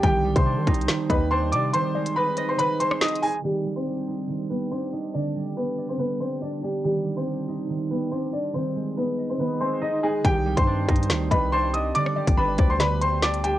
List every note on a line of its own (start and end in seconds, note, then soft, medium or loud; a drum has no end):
0.00 0.35 C2 loud
0.00 0.87 D#3 medium
0.00 3.40 C4 medium
0.00 1.70 G4 medium
0.00 1.70 D5 medium
0.00 0.34 G5 loud
0.00 kick loud
0.00 closed hi-hat medium
0.04 0.34 G4 medium
0.25 0.93 G3 medium
0.36 0.59 C3 loud
0.36 1.06 C5 medium
0.36 1.06 C6 medium
0.36 kick loud
0.36 closed hi-hat medium
0.46 1.31 D4 medium
0.57 0.67 D#3 loud
0.67 0.88 C2 loud
0.67 2.16 D#4 loud
0.67 kick loud
0.67 closed hi-hat medium
0.74 closed hi-hat medium
0.81 closed hi-hat medium
0.88 1.73 D#3 medium
0.88 snare loud
0.88 closed hi-hat loud
1.10 1.54 D#2 loud
1.10 1.79 G3 medium
1.10 1.28 B4 medium
1.10 1.30 D#5 medium
1.10 1.27 B5 medium
1.10 kick medium
1.10 closed hi-hat medium
1.31 1.52 D4 loud
1.31 1.49 C5 medium
1.31 1.48 C6 medium
1.52 1.73 C3 loud
1.52 1.80 D4 medium
1.52 1.70 D5 medium
1.52 1.70 D6 medium
1.52 closed hi-hat medium
1.73 2.58 D#3 medium
1.73 3.42 D#4 medium
1.73 3.42 G#4 medium
1.73 2.14 C5 medium
1.73 2.13 C6 loud
1.73 closed hi-hat medium
1.95 2.64 G#3 medium
1.95 2.35 D5 medium
2.06 closed hi-hat medium
2.16 3.01 D#4 medium
2.16 2.47 B4 medium
2.16 2.47 B5 medium
2.37 2.57 C5 medium
2.37 3.92 D#5 loud
2.37 closed hi-hat medium
2.49 2.57 C5 medium
2.49 2.57 C6 medium
2.59 3.42 D#3 medium
2.59 2.77 B4 medium
2.59 2.99 C5 medium
2.59 2.76 B5 loud
2.59 closed hi-hat loud
2.80 3.49 G#3 medium
2.80 2.98 C5 medium
2.80 2.97 C6 medium
2.80 closed hi-hat medium
2.91 cross-stick loud
3.01 3.22 D#4 loud
3.01 3.19 D#5 medium
3.01 3.19 D#6 medium
3.01 snare loud
3.01 closed hi-hat medium
3.08 closed hi-hat medium
3.15 closed hi-hat medium
3.22 3.92 D#4 medium
3.22 3.40 G#4 medium
3.22 3.40 G#5 medium
3.22 open hi-hat medium
3.44 4.28 D#3 medium
3.44 3.75 G3 medium
3.44 5.12 C4 medium
3.44 8.50 G4 medium
3.44 3.74 G4 loud
3.44 8.50 D5 medium
3.65 4.34 G3 medium
3.76 4.46 C4 medium
3.76 4.46 C5 medium
3.86 4.71 D4 medium
4.08 5.20 D#4 medium
4.29 5.19 D#3 medium
4.50 5.19 G3 medium
4.50 4.68 B3 medium
4.50 4.68 B4 medium
4.71 4.89 C4 medium
4.71 4.92 D4 loud
4.71 4.89 C5 medium
4.93 5.56 D4 medium
4.93 5.11 D#4 medium
4.93 5.10 D#5 medium
5.14 5.98 D3 medium
5.14 6.83 B3 medium
5.14 6.83 D4 medium
5.14 5.54 D4 medium
5.14 5.54 D5 loud
5.36 6.04 G3 medium
5.57 5.88 B3 medium
5.57 6.42 D4 medium
5.57 5.87 B4 medium
5.78 6.90 D5 loud
5.89 5.98 C4 medium
5.89 5.97 C5 medium
5.99 6.89 D3 medium
5.99 6.17 B3 medium
5.99 6.17 B4 medium
6.20 6.89 G3 medium
6.20 6.38 C4 medium
6.20 6.38 C5 medium
6.42 6.62 D4 medium
6.42 6.60 D4 medium
6.42 6.59 D5 medium
6.63 6.81 G3 medium
6.63 6.90 D4 medium
6.63 6.80 G4 medium
6.84 7.68 D#3 medium
6.84 7.15 G3 medium
6.84 7.15 G4 medium
7.05 7.74 G3 medium
7.17 7.87 C4 medium
7.17 7.87 C5 medium
7.27 8.12 D4 medium
7.48 8.97 D#4 medium
7.69 8.54 D#3 medium
7.91 8.59 G3 medium
7.91 8.09 B3 medium
7.91 8.08 B4 medium
8.12 8.30 C4 medium
8.12 8.33 D4 loud
8.12 8.29 C5 medium
8.33 8.61 D4 medium
8.33 8.51 D4 medium
8.33 8.50 D5 medium
8.54 9.38 D#3 medium
8.54 8.95 C4 medium
8.54 10.23 G#4 medium
8.54 8.94 C5 medium
8.54 10.23 D#5 medium
8.76 9.45 G#3 medium
8.97 9.28 B3 medium
8.97 9.81 D#4 medium
8.97 9.28 B4 medium
9.18 10.73 D#5 medium
9.30 9.38 C4 medium
9.30 9.38 C5 medium
9.39 10.23 D#3 medium
9.39 9.57 B3 medium
9.39 9.57 B4 medium
9.61 10.30 G#3 medium
9.61 9.79 C4 medium
9.61 9.78 C5 medium
9.82 10.03 D#4 loud
9.82 10.00 D#4 medium
9.82 10.00 D#5 medium
10.03 10.21 G#3 medium
10.03 10.73 D#4 medium
10.03 10.21 G#4 medium
10.25 10.56 C2 loud
10.25 11.09 D#3 medium
10.25 11.93 C4 medium
10.25 13.59 G4 medium
10.25 10.56 G4 medium
10.25 13.59 D5 medium
10.25 10.55 G5 loud
10.25 kick loud
10.25 closed hi-hat medium
10.46 11.15 G3 medium
10.57 10.87 G2 loud
10.57 11.27 C5 medium
10.57 11.27 C6 medium
10.57 kick loud
10.57 closed hi-hat medium
10.67 11.52 D4 medium
10.88 11.11 G2 loud
10.88 12.01 D#4 loud
10.88 kick loud
10.88 closed hi-hat medium
10.96 closed hi-hat medium
11.03 closed hi-hat medium
11.10 11.30 D2 loud
11.10 12.00 D#3 medium
11.10 snare loud
11.10 closed hi-hat medium
11.31 11.92 C2 loud
11.31 12.00 G3 medium
11.31 11.49 B4 medium
11.31 11.51 D#5 medium
11.31 11.48 B5 medium
11.31 kick medium
11.31 closed hi-hat medium
11.52 11.73 D4 loud
11.52 11.70 C5 medium
11.52 11.70 C6 medium
11.74 12.37 D4 medium
11.74 11.91 D#5 medium
11.74 11.91 D#6 medium
11.74 closed hi-hat medium
11.95 12.79 D3 loud
11.95 13.59 B3 medium
11.95 13.59 D4 medium
11.95 12.35 D5 medium
11.95 12.35 D6 loud
11.95 closed hi-hat medium
12.06 cross-stick medium
12.16 12.85 G3 medium
12.16 12.56 D5 medium
12.27 12.37 G1 loud
12.27 kick medium
12.27 closed hi-hat medium
12.37 12.58 G1 loud
12.37 13.22 D4 medium
12.37 12.68 B4 medium
12.37 12.68 B5 medium
12.58 13.59 D2 loud
12.58 12.79 C5 medium
12.58 13.59 D5 loud
12.58 kick loud
12.58 closed hi-hat medium
12.70 12.79 C5 medium
12.70 12.78 C6 medium
12.80 13.59 D3 medium
12.80 12.98 B4 medium
12.80 13.20 D5 medium
12.80 12.97 B5 medium
12.80 snare medium
12.80 closed hi-hat loud
13.01 13.59 G3 medium
13.01 13.19 C5 medium
13.01 13.19 C6 medium
13.01 closed hi-hat medium
13.22 13.43 D4 loud
13.22 13.41 D5 medium
13.22 13.40 D6 medium
13.22 snare loud
13.22 closed hi-hat medium
13.34 closed hi-hat medium
13.44 13.59 D4 medium
13.44 13.59 G4 medium
13.44 13.59 G5 medium
13.44 closed hi-hat medium